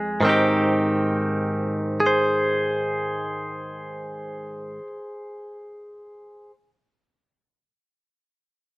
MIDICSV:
0, 0, Header, 1, 2, 480
1, 0, Start_track
1, 0, Key_signature, -4, "major"
1, 0, Tempo, 1204819
1, 85, Time_signature, 4, 2, 24, 8
1, 3494, End_track
2, 0, Start_track
2, 0, Title_t, "Clean electric guitar"
2, 0, Program_c, 0, 27
2, 0, Note_on_c, 0, 41, 51
2, 0, Note_on_c, 0, 56, 39
2, 0, Note_on_c, 0, 68, 36
2, 80, Note_off_c, 0, 41, 0
2, 82, Note_on_c, 0, 44, 41
2, 84, Note_off_c, 0, 68, 0
2, 90, Note_on_c, 0, 51, 38
2, 97, Note_off_c, 0, 56, 0
2, 99, Note_on_c, 0, 60, 38
2, 105, Note_on_c, 0, 63, 36
2, 116, Note_on_c, 0, 67, 34
2, 796, Note_off_c, 0, 60, 0
2, 798, Note_on_c, 0, 68, 43
2, 821, Note_off_c, 0, 63, 0
2, 823, Note_on_c, 0, 72, 43
2, 1906, Note_off_c, 0, 44, 0
2, 1914, Note_off_c, 0, 51, 0
2, 1940, Note_off_c, 0, 67, 0
2, 2593, Note_off_c, 0, 68, 0
2, 2605, Note_off_c, 0, 72, 0
2, 3494, End_track
0, 0, End_of_file